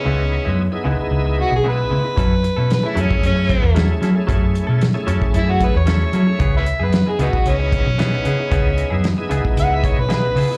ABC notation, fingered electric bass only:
X:1
M:4/4
L:1/16
Q:1/4=114
K:C#m
V:1 name="Fingered electric bass" clef=bass
C,,3 F,,2 z C,, z C,,3 B,,,3 C, z | F,,3 B,,2 z F,, z F,,3 E,,3 F, z | F,,3 B,,2 z F,, z F,,3 E,,3 F, z | C,,3 F,,2 z C,, z C,,3 B,,,3 C, z |
C,,3 F,,2 z C,, z C,,3 B,,,3 C, z |]